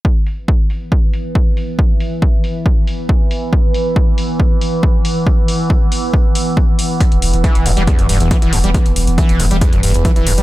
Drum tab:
HH |--o---o---o---o-|--o---o---o---o-|--o---o---o---o-|--o---o---o---o-|
BD |o---o---o---o---|o---o---o---o---|o---o---o---o---|o---o---o---o---|

HH |xxoxxxoxxxoxxxox|xxoxxxoxxxoxxxox|
BD |o---o---o---o---|o---o---o---o---|